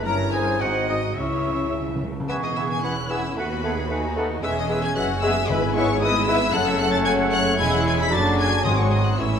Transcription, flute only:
0.07 0.32 C#5 medium
0.34 0.60 C5 medium
0.61 0.88 C5 medium
0.90 1.17 F#4 medium
1.18 1.74 E4 medium
2.30 2.85 C#6 medium
2.84 3.40 B5 medium
3.38 3.64 F#5 medium
3.64 3.70 A5 medium
3.91 4.17 G#5 medium
4.18 4.24 A5 medium
4.45 5.48 G#5 medium
5.51 6.04 G#5 medium
6.03 6.55 B5 medium
6.54 7.09 A5 medium
7.07 7.58 F#5 medium
7.59 8.13 B5 loud
8.12 8.66 A5 medium
8.65 9.00 G#5 medium
9.19 9.39 C#5 medium

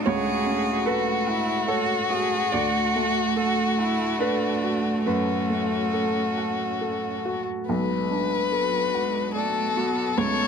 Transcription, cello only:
0.06 0.88 G#4 medium
0.86 1.28 F#4 medium
1.27 1.69 E4 medium
1.68 2.10 F#4 medium
2.10 2.55 G#4 medium
2.53 3.35 F#4 medium
3.36 3.77 F#4 medium
3.78 4.21 E4 medium
4.20 5.06 D4 medium
5.07 7.22 C#4 medium
7.70 8.54 G#3 medium
8.52 8.93 F#3 soft
8.94 9.37 G#3 medium
9.36 9.78 A3 medium
9.77 10.16 B3 medium
10.17 10.48 A3 medium

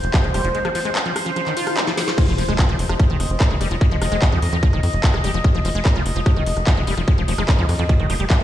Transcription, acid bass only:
0.14 0.21 F3 medium
0.24 0.29 G#3 medium
0.34 0.42 G3 medium
0.44 0.49 F3 medium
0.55 0.60 G#3 medium
0.65 0.70 F3 loud
0.75 0.80 F3 medium
0.85 0.90 G#3 loud
0.96 0.98 G3 medium
1.06 1.13 F3 loud
1.26 1.31 F3 medium
1.36 1.41 F3 medium
1.47 1.54 D#3 medium
1.57 1.79 F4 medium
1.77 1.84 F3 loud
1.87 1.92 F3 loud
1.98 2.02 F3 medium
2.08 2.13 F3 medium
2.18 2.23 G#3 medium
2.28 2.33 F3 loud
2.38 2.43 F3 medium
2.49 2.53 G#3 loud
2.59 2.62 G3 medium
2.69 2.76 F3 loud
2.89 2.94 F3 medium
3.00 3.04 F3 medium
3.10 3.17 D#3 medium
3.40 3.48 F3 medium
3.51 3.55 G#3 medium
3.61 3.68 G3 medium
3.71 3.76 F3 medium
3.81 3.86 G#3 medium
3.91 3.96 F3 loud
4.02 4.06 F3 medium
4.12 4.17 G#3 loud
4.22 4.25 G3 medium
4.32 4.40 F3 loud
4.53 4.57 F3 medium
4.63 4.68 F3 medium
4.73 4.80 D#3 medium
5.04 5.11 F3 medium
5.14 5.19 G#3 medium
5.24 5.31 G3 medium
5.34 5.39 F3 medium
5.44 5.49 G#3 medium
5.55 5.60 F3 loud
5.65 5.70 F3 medium
5.75 5.80 G#3 loud
5.85 5.88 G3 medium
5.95 6.03 F3 loud
6.16 6.21 F3 medium
6.26 6.31 F3 medium
6.36 6.44 D#3 medium
6.67 6.74 F3 medium
6.77 6.82 G#3 medium
6.87 6.95 G3 medium
6.98 7.02 F3 medium
7.08 7.13 G#3 medium
7.18 7.23 F3 loud
7.28 7.33 F3 medium
7.38 7.43 G#3 loud
7.49 7.51 G3 medium
7.59 7.66 F3 loud
7.79 7.84 F3 medium
7.89 7.94 F3 medium
8.00 8.07 D#3 medium
8.10 8.15 F3 medium
8.20 8.25 G3 medium
8.30 8.42 F3 loud
8.40 8.44 F4 medium

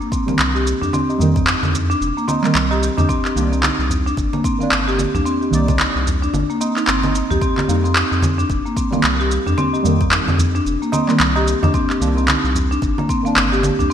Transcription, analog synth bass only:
0.39 0.74 C2 medium
0.82 0.89 F2 medium
1.20 1.55 F2 loud
1.63 1.95 F2 medium
2.01 2.12 F1 medium
2.55 2.90 C2 loud
2.98 3.06 F2 medium
3.36 3.71 C2 medium
3.79 4.12 C2 medium
4.17 4.28 G1 medium
4.71 5.06 G1 medium
5.14 5.22 C2 medium
5.52 5.87 C2 medium
5.95 6.28 C2 medium
6.33 6.44 G1 medium
6.88 7.23 G1 medium
7.31 7.38 C2 medium
7.69 8.04 F2 medium
8.12 8.44 F2 medium
8.49 8.61 F1 medium
9.04 9.39 C2 medium
9.46 9.54 F2 medium
9.85 10.20 F2 medium
10.28 10.60 F2 medium
10.66 10.77 F1 medium
11.20 11.55 C2 loud
11.63 11.71 F2 medium
12.01 12.36 C2 loud
12.44 12.77 C2 medium
12.82 12.93 G1 medium
13.36 13.71 G1 loud
13.79 13.87 C2 medium

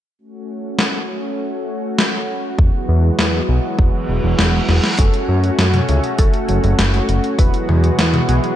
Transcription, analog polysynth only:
4.99 5.85 A3 medium
4.99 5.85 C#4 medium
4.99 5.85 F#4 medium
4.99 5.85 A4 medium
5.89 6.14 A3 medium
5.89 6.14 C#4 medium
5.89 6.14 F#4 medium
5.89 6.14 G#4 medium
6.19 7.35 A3 medium
6.19 7.35 C#4 medium
6.19 7.35 F#4 medium
6.19 7.35 A4 loud
7.39 8.25 B3 medium
7.39 8.25 E4 medium
7.39 8.25 F#4 medium
7.39 8.25 B4 loud
8.28 8.56 B3 loud
8.28 8.56 E4 medium
8.28 8.56 F#4 medium
8.28 8.56 G#4 loud

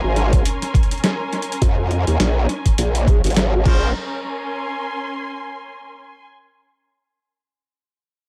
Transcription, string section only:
0.00 3.64 C#4 medium
0.00 3.66 A#4 medium
0.00 3.65 G#5 medium
0.00 3.65 C6 medium
3.65 5.94 C#4 medium
3.75 5.94 A#4 medium
4.13 6.23 G#5 medium
4.20 6.23 C6 medium

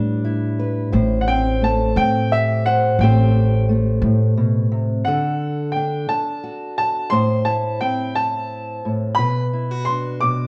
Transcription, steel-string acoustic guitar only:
0.00 0.91 A2 medium
0.00 1.61 G3 medium
0.00 0.90 D4 medium
0.00 0.58 B4 medium
0.25 2.31 E4 medium
0.60 0.90 B4 medium
0.92 2.99 A2 medium
0.92 2.65 C5 medium
1.28 1.96 C4 medium
1.62 3.01 A3 medium
1.97 3.00 C4 medium
2.33 2.97 G4 medium
2.67 2.96 C5 medium
3.01 4.02 A2 medium
3.01 3.68 A3 medium
3.01 3.35 C4 medium
3.01 5.03 G4 medium
3.01 5.04 C5 medium
3.69 5.02 A3 medium
4.03 4.37 A2 medium
4.37 4.71 B2 medium
4.72 5.06 C3 medium
5.07 6.09 D3 medium
5.07 7.12 A4 medium
5.76 7.09 D4 medium
6.10 muted steel-string acoustic guitar stroke medium
6.44 7.08 F#4 medium
7.11 8.83 A2 medium
7.11 9.14 C5 medium
7.45 9.18 E4 medium
7.81 9.18 C4 medium
8.85 9.17 A2 medium
9.18 10.21 B2 medium
9.18 10.47 B4 medium
9.53 9.71 E4 medium
9.71 10.47 F#4 soft
9.89 10.47 D4 soft
10.22 10.47 B2 medium

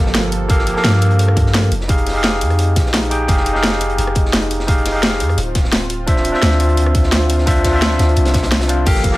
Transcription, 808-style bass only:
0.00 0.74 G1 medium
0.84 1.70 G2 loud
1.71 2.43 F1 loud
2.41 2.78 F2 medium
2.76 3.27 A#1 medium
3.29 3.97 F1 loud
3.98 5.22 F1 medium
5.20 5.36 F2 medium
5.38 6.32 D1 medium
6.42 7.98 D2 loud
7.99 8.15 D2 medium
8.17 8.85 C2 loud
8.87 9.17 G1 loud

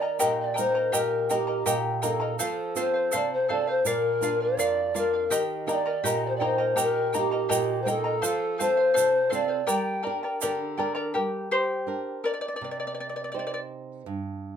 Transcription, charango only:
0.01 0.19 A#4 soft
0.01 0.18 D#5 soft
0.01 0.19 A#5 soft
0.19 0.56 G4 medium
0.19 0.54 A#4 medium
0.19 0.54 D#5 medium
0.19 0.53 G5 medium
0.19 0.55 A#5 medium
0.54 0.74 A#4 medium
0.54 0.74 D#5 medium
0.54 0.74 G5 medium
0.54 0.74 A#5 medium
0.75 0.92 A#4 soft
0.75 0.92 D#5 soft
0.75 0.92 A#5 medium
0.92 1.29 G4 medium
0.92 1.29 A#4 medium
0.92 1.29 D#5 medium
0.92 1.28 G5 medium
0.92 1.30 A#5 medium
1.29 1.47 A#4 medium
1.29 1.47 D#5 medium
1.29 1.48 G5 medium
1.29 1.46 A#5 medium
1.47 1.65 A#4 soft
1.47 1.65 D#5 soft
1.47 1.65 A#5 medium
1.66 2.03 G4 medium
1.66 2.01 A#4 medium
1.66 2.01 D#5 medium
1.66 2.01 G5 medium
1.66 2.02 A#5 medium
2.02 2.20 A#4 medium
2.02 2.20 D#5 medium
2.02 2.21 G5 medium
2.02 2.19 A#5 medium
2.20 2.39 A#4 soft
2.20 2.39 D#5 medium
2.20 2.39 A#5 medium
2.39 2.75 A4 medium
2.39 2.75 C5 medium
2.39 2.76 F5 medium
2.76 2.94 A4 medium
2.76 2.94 C5 medium
2.76 2.93 F5 medium
2.94 3.11 C5 soft
2.94 3.11 F5 medium
3.11 3.47 A4 medium
3.11 3.48 C5 medium
3.11 3.48 F5 medium
3.48 3.67 A4 medium
3.48 3.67 C5 medium
3.48 3.66 F5 medium
3.67 3.86 C5 soft
3.67 3.85 F5 medium
3.86 4.21 A#4 medium
3.86 4.22 D5 medium
3.86 4.22 F5 medium
4.22 4.40 A#4 medium
4.22 4.40 D5 medium
4.22 4.39 F5 medium
4.40 4.58 D5 soft
4.40 4.58 F5 medium
4.59 4.93 A#4 medium
4.59 4.94 D5 medium
4.59 4.94 F5 medium
4.94 5.13 A#4 medium
4.94 5.13 D5 medium
4.94 5.12 F5 medium
5.13 5.30 D5 soft
5.13 5.30 F5 medium
5.30 5.67 G4 medium
5.30 5.66 A#4 medium
5.30 5.67 D#5 medium
5.30 5.66 G5 medium
5.30 5.68 A#5 medium
5.67 5.85 A#4 medium
5.67 5.85 D#5 medium
5.67 5.86 G5 medium
5.67 5.84 A#5 medium
5.86 6.04 A#4 soft
5.86 6.04 D#5 soft
5.86 6.04 A#5 medium
6.04 6.40 G4 medium
6.04 6.40 A#4 medium
6.04 6.40 D#5 medium
6.04 6.39 G5 medium
6.04 6.40 A#5 medium
6.40 6.59 A#4 medium
6.40 6.57 D#5 medium
6.40 6.58 G5 medium
6.40 6.57 A#5 medium
6.58 6.75 A#4 soft
6.58 6.76 D#5 soft
6.58 6.75 A#5 medium
6.76 7.13 G4 medium
6.76 7.12 A#4 medium
6.76 7.13 D#5 medium
6.76 7.11 G5 medium
6.76 7.13 A#5 medium
7.13 7.32 A#4 medium
7.13 7.31 D#5 medium
7.13 7.31 G5 medium
7.13 7.30 A#5 medium
7.31 7.48 A#4 soft
7.31 7.48 D#5 soft
7.31 7.48 A#5 medium
7.49 7.86 G4 medium
7.49 7.86 A#4 medium
7.49 7.86 D#5 medium
7.49 7.85 G5 medium
7.49 7.86 A#5 medium
7.87 8.05 A#4 medium
7.87 8.04 D#5 medium
7.87 8.04 G5 medium
7.87 8.03 A#5 medium
8.04 8.21 A#4 soft
8.04 8.23 D#5 soft
8.04 8.22 A#5 medium
8.22 8.57 A4 medium
8.22 8.58 C5 medium
8.22 8.59 F5 medium
8.58 8.77 A4 medium
8.58 8.77 C5 medium
8.58 8.76 F5 medium
8.77 8.93 C5 soft
8.77 8.93 F5 medium
8.94 9.28 A4 medium
8.94 9.29 C5 medium
8.94 9.29 F5 medium
9.29 9.49 A4 medium
9.29 9.48 C5 medium
9.29 9.47 F5 medium
9.48 9.66 C5 soft
9.48 9.66 F5 medium
9.67 10.04 G4 medium
9.67 10.02 A#4 medium
9.67 10.02 D5 medium
9.67 10.01 G5 medium
9.67 10.02 A#5 medium
10.03 10.22 A#4 medium
10.03 10.22 D5 medium
10.03 10.22 G5 medium
10.03 10.22 A#5 medium
10.23 10.41 A#4 soft
10.23 10.41 D5 soft
10.23 10.41 A#5 soft
10.41 10.78 G4 medium
10.41 10.77 A#4 medium
10.41 10.77 D5 medium
10.41 10.76 G5 medium
10.41 10.78 A#5 medium
10.77 10.95 A#4 medium
10.77 10.94 D5 medium
10.77 10.96 G5 medium
10.77 10.93 A#5 medium
10.95 11.13 A#4 soft
10.95 11.14 D5 medium
10.95 11.13 A#5 medium
11.14 11.48 G4 medium
11.14 11.52 A#4 medium
11.51 12.20 G4 medium
11.51 12.26 C5 medium
12.24 12.31 A#4 medium
12.24 12.31 D5 medium
12.34 12.39 D5 medium
12.41 12.47 D5 medium
12.48 12.54 D5 medium
12.56 12.62 D5 medium
12.64 12.70 D5 medium
12.71 12.77 D5 medium
12.80 12.85 D5 soft
12.87 12.92 D5 medium
12.95 12.99 D5 soft
13.00 13.06 D5 medium
13.09 13.15 D5 soft
13.16 13.22 D5 medium
13.24 13.30 D5 soft
13.32 13.37 D5 medium
13.39 13.44 D5 medium
13.47 13.52 D5 medium
13.54 13.59 D5 medium

